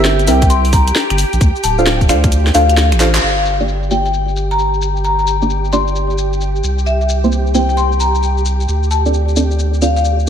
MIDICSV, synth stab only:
0, 0, Header, 1, 2, 480
1, 0, Start_track
1, 0, Tempo, 454545
1, 1490, Time_signature, 4, 2, 24, 8
1, 10867, End_track
2, 0, Start_track
2, 0, Title_t, "Synth stab"
2, 0, Program_c, 0, 62
2, 290, Note_on_c, 0, 60, 83
2, 290, Note_on_c, 0, 64, 80
2, 290, Note_on_c, 0, 67, 77
2, 290, Note_on_c, 0, 76, 92
2, 291, Note_on_c, 0, 70, 76
2, 437, Note_off_c, 0, 60, 0
2, 437, Note_off_c, 0, 64, 0
2, 437, Note_off_c, 0, 67, 0
2, 437, Note_off_c, 0, 70, 0
2, 437, Note_off_c, 0, 76, 0
2, 1884, Note_on_c, 0, 62, 76
2, 1884, Note_on_c, 0, 65, 68
2, 1884, Note_on_c, 0, 69, 67
2, 1884, Note_on_c, 0, 72, 66
2, 1884, Note_on_c, 0, 77, 83
2, 1964, Note_off_c, 0, 65, 0
2, 1964, Note_off_c, 0, 77, 0
2, 1965, Note_off_c, 0, 62, 0
2, 1965, Note_off_c, 0, 69, 0
2, 1965, Note_off_c, 0, 72, 0
2, 2208, Note_on_c, 0, 62, 93
2, 2208, Note_on_c, 0, 72, 84
2, 2209, Note_on_c, 0, 65, 85
2, 2209, Note_on_c, 0, 69, 82
2, 2209, Note_on_c, 0, 77, 103
2, 2356, Note_off_c, 0, 62, 0
2, 2356, Note_off_c, 0, 65, 0
2, 2356, Note_off_c, 0, 69, 0
2, 2356, Note_off_c, 0, 72, 0
2, 2356, Note_off_c, 0, 77, 0
2, 2687, Note_on_c, 0, 62, 94
2, 2688, Note_on_c, 0, 65, 84
2, 2688, Note_on_c, 0, 69, 84
2, 2688, Note_on_c, 0, 72, 87
2, 2688, Note_on_c, 0, 77, 102
2, 2887, Note_off_c, 0, 62, 0
2, 2887, Note_off_c, 0, 77, 0
2, 2888, Note_off_c, 0, 65, 0
2, 2888, Note_off_c, 0, 69, 0
2, 2888, Note_off_c, 0, 72, 0
2, 3168, Note_on_c, 0, 62, 87
2, 3168, Note_on_c, 0, 65, 74
2, 3168, Note_on_c, 0, 69, 77
2, 3168, Note_on_c, 0, 77, 93
2, 3169, Note_on_c, 0, 72, 77
2, 3316, Note_off_c, 0, 62, 0
2, 3316, Note_off_c, 0, 65, 0
2, 3316, Note_off_c, 0, 69, 0
2, 3316, Note_off_c, 0, 72, 0
2, 3316, Note_off_c, 0, 77, 0
2, 3804, Note_on_c, 0, 58, 87
2, 3804, Note_on_c, 0, 62, 76
2, 3804, Note_on_c, 0, 65, 78
2, 3804, Note_on_c, 0, 67, 77
2, 3805, Note_on_c, 0, 74, 95
2, 3885, Note_off_c, 0, 58, 0
2, 3885, Note_off_c, 0, 62, 0
2, 3885, Note_off_c, 0, 65, 0
2, 3885, Note_off_c, 0, 67, 0
2, 3885, Note_off_c, 0, 74, 0
2, 4128, Note_on_c, 0, 62, 75
2, 4128, Note_on_c, 0, 67, 78
2, 4128, Note_on_c, 0, 74, 93
2, 4129, Note_on_c, 0, 58, 83
2, 4129, Note_on_c, 0, 65, 73
2, 4276, Note_off_c, 0, 58, 0
2, 4276, Note_off_c, 0, 62, 0
2, 4276, Note_off_c, 0, 65, 0
2, 4276, Note_off_c, 0, 67, 0
2, 4276, Note_off_c, 0, 74, 0
2, 5724, Note_on_c, 0, 58, 74
2, 5724, Note_on_c, 0, 62, 64
2, 5724, Note_on_c, 0, 65, 63
2, 5724, Note_on_c, 0, 67, 67
2, 5724, Note_on_c, 0, 74, 81
2, 5805, Note_off_c, 0, 58, 0
2, 5805, Note_off_c, 0, 62, 0
2, 5805, Note_off_c, 0, 65, 0
2, 5805, Note_off_c, 0, 67, 0
2, 5805, Note_off_c, 0, 74, 0
2, 6049, Note_on_c, 0, 58, 89
2, 6049, Note_on_c, 0, 62, 81
2, 6049, Note_on_c, 0, 65, 78
2, 6049, Note_on_c, 0, 67, 78
2, 6049, Note_on_c, 0, 74, 96
2, 6196, Note_off_c, 0, 58, 0
2, 6196, Note_off_c, 0, 62, 0
2, 6196, Note_off_c, 0, 65, 0
2, 6196, Note_off_c, 0, 67, 0
2, 6196, Note_off_c, 0, 74, 0
2, 7644, Note_on_c, 0, 58, 81
2, 7644, Note_on_c, 0, 60, 75
2, 7644, Note_on_c, 0, 64, 80
2, 7644, Note_on_c, 0, 67, 82
2, 7644, Note_on_c, 0, 72, 94
2, 7725, Note_off_c, 0, 58, 0
2, 7725, Note_off_c, 0, 60, 0
2, 7725, Note_off_c, 0, 64, 0
2, 7725, Note_off_c, 0, 67, 0
2, 7725, Note_off_c, 0, 72, 0
2, 7968, Note_on_c, 0, 67, 78
2, 7969, Note_on_c, 0, 58, 82
2, 7969, Note_on_c, 0, 60, 76
2, 7969, Note_on_c, 0, 64, 74
2, 7969, Note_on_c, 0, 72, 91
2, 8116, Note_off_c, 0, 58, 0
2, 8116, Note_off_c, 0, 60, 0
2, 8116, Note_off_c, 0, 64, 0
2, 8116, Note_off_c, 0, 67, 0
2, 8116, Note_off_c, 0, 72, 0
2, 9565, Note_on_c, 0, 60, 74
2, 9565, Note_on_c, 0, 62, 67
2, 9565, Note_on_c, 0, 65, 67
2, 9565, Note_on_c, 0, 69, 65
2, 9565, Note_on_c, 0, 74, 79
2, 9645, Note_off_c, 0, 60, 0
2, 9645, Note_off_c, 0, 62, 0
2, 9645, Note_off_c, 0, 65, 0
2, 9645, Note_off_c, 0, 69, 0
2, 9645, Note_off_c, 0, 74, 0
2, 9889, Note_on_c, 0, 60, 83
2, 9890, Note_on_c, 0, 62, 83
2, 9890, Note_on_c, 0, 65, 80
2, 9890, Note_on_c, 0, 69, 83
2, 9890, Note_on_c, 0, 74, 97
2, 10036, Note_off_c, 0, 60, 0
2, 10036, Note_off_c, 0, 65, 0
2, 10037, Note_off_c, 0, 62, 0
2, 10037, Note_off_c, 0, 69, 0
2, 10037, Note_off_c, 0, 74, 0
2, 10370, Note_on_c, 0, 60, 91
2, 10370, Note_on_c, 0, 62, 83
2, 10370, Note_on_c, 0, 65, 83
2, 10370, Note_on_c, 0, 69, 83
2, 10370, Note_on_c, 0, 74, 98
2, 10568, Note_off_c, 0, 62, 0
2, 10568, Note_off_c, 0, 65, 0
2, 10568, Note_off_c, 0, 69, 0
2, 10568, Note_off_c, 0, 74, 0
2, 10569, Note_off_c, 0, 60, 0
2, 10867, End_track
0, 0, End_of_file